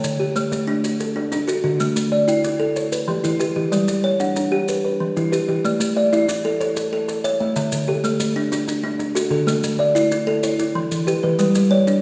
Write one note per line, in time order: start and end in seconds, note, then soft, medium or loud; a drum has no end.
0.00 0.20 D3 medium
0.00 0.20 G5 medium
0.00 maracas medium
0.04 0.36 D3 medium
0.20 0.68 G4 medium
0.36 0.68 A3 medium
0.36 0.84 C#5 medium
0.36 maracas medium
0.52 0.84 A3 medium
0.52 maracas medium
0.67 1.00 D4 medium
0.84 1.15 F#4 medium
0.84 maracas medium
1.00 1.47 A4 medium
1.00 maracas medium
1.16 1.31 D4 medium
1.16 1.64 F#4 medium
1.32 1.80 D4 medium
1.32 1.64 D4 medium
1.32 maracas medium
1.48 1.63 F#4 medium
1.48 1.96 A4 medium
1.48 maracas medium
1.64 1.96 D3 medium
1.64 1.96 F#4 medium
1.80 2.12 A3 medium
1.80 maracas medium
1.96 2.28 A3 medium
1.96 maracas medium
2.12 2.60 D5 medium
2.28 2.60 E4 medium
2.28 2.76 G5 medium
2.28 maracas medium
2.44 2.76 E4 medium
2.44 maracas medium
2.60 2.76 A4 medium
2.76 2.92 C#5 medium
2.76 maracas medium
2.92 3.39 B4 medium
2.92 maracas medium
3.08 3.40 E3 medium
3.08 3.56 G4 medium
3.24 3.55 E3 medium
3.24 3.72 E4 medium
3.24 maracas medium
3.40 3.55 G4 medium
3.40 3.88 B4 medium
3.40 maracas medium
3.56 3.88 E3 medium
3.56 3.88 G4 medium
3.72 4.04 G3 medium
3.72 4.04 D5 medium
3.72 maracas medium
3.88 4.20 G3 medium
3.88 maracas medium
4.04 4.52 C#5 medium
4.20 4.52 D4 medium
4.20 4.68 F#5 medium
4.20 maracas medium
4.36 4.68 D4 medium
4.36 maracas medium
4.52 4.68 G4 medium
4.68 4.83 B4 medium
4.68 maracas medium
4.85 5.31 B4 medium
5.00 5.32 E3 medium
5.17 5.47 E3 medium
5.17 5.64 E4 medium
5.17 maracas medium
5.32 5.48 G4 medium
5.32 5.80 B4 medium
5.32 maracas medium
5.48 5.80 E3 medium
5.48 5.80 G4 medium
5.65 5.96 A3 medium
5.65 5.96 D5 medium
5.65 maracas medium
5.80 6.12 A3 medium
5.80 maracas medium
5.96 6.44 D5 medium
5.96 6.12 E5 medium
6.13 6.44 E4 medium
6.13 6.61 E5 medium
6.13 maracas medium
6.28 6.60 E4 medium
6.28 maracas medium
6.45 6.59 A4 medium
6.61 6.92 A4 medium
6.61 6.92 C#5 medium
6.61 maracas medium
6.77 7.07 A4 medium
6.77 maracas medium
6.93 7.24 A4 medium
7.08 7.40 A4 medium
7.08 maracas medium
7.24 7.56 C#5 medium
7.24 7.55 E5 medium
7.24 maracas medium
7.40 7.72 A3 medium
7.40 7.72 E5 medium
7.56 7.88 D3 medium
7.56 7.88 E5 medium
7.56 maracas medium
7.72 8.04 D3 medium
7.72 maracas medium
7.88 8.36 G4 medium
7.88 8.03 A4 medium
8.04 8.36 A3 medium
8.04 8.52 A4 medium
8.04 maracas medium
8.20 8.52 A3 medium
8.20 maracas medium
8.36 8.51 D4 medium
8.52 8.82 D4 medium
8.52 8.84 F#4 medium
8.52 maracas medium
8.68 8.98 D4 medium
8.68 maracas medium
8.84 9.16 D4 medium
8.99 9.31 D4 medium
8.99 maracas medium
9.15 9.47 F#4 medium
9.15 9.46 A4 medium
9.15 maracas medium
9.31 9.63 D3 medium
9.31 9.63 A4 medium
9.47 9.79 A3 medium
9.47 9.79 A4 medium
9.47 maracas medium
9.64 9.96 A3 medium
9.64 maracas medium
9.79 10.27 D5 medium
9.79 9.94 E5 medium
9.95 10.27 E4 medium
9.95 10.43 E5 medium
9.95 maracas medium
10.12 10.43 E4 medium
10.12 maracas medium
10.27 10.43 A4 medium
10.43 10.91 E4 medium
10.43 10.59 C#5 medium
10.43 maracas medium
10.59 11.08 E4 medium
10.59 maracas medium
10.75 11.07 E3 medium
10.91 11.22 E3 medium
10.91 maracas medium
11.07 11.39 G4 medium
11.07 11.39 B4 medium
11.07 maracas medium
11.23 11.55 E3 medium
11.23 11.55 B4 medium
11.39 11.71 G3 medium
11.39 11.72 B4 medium
11.39 maracas medium
11.55 11.87 G3 medium
11.55 maracas medium
11.71 12.02 C#5 medium
11.71 12.02 D5 medium
11.87 12.02 D4 medium
11.87 maracas medium